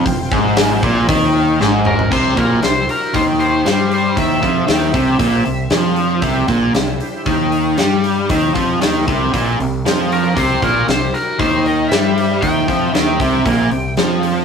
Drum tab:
CC |----------------|x---------------|----------------|----------------|
HH |o---o---o-------|--o-o-o-o-o-o-o-|o-o-o-o-o-o-o-o-|o-o-o-o-o-o-o-o-|
SD |----o-------o---|----o-------o---|----o-------o---|----o-------o---|
T2 |--------------o-|----------------|----------------|----------------|
FT |---------------o|----------------|----------------|----------------|
BD |o-o---o-o-------|o-o-----o-------|o-o---o-o-------|o-o-----o-------|

CC |----------------|----------------|----------------|
HH |o-o-o-o-o-o-o-o-|o-o-o-o-o-o-o-o-|o-o-o-o-o-o-o-o-|
SD |----o-------o---|----o-------o---|----o-------o---|
T2 |----------------|----------------|----------------|
FT |----------------|----------------|----------------|
BD |o-o---o-o-------|o-o-----o-------|o-o---o-o-------|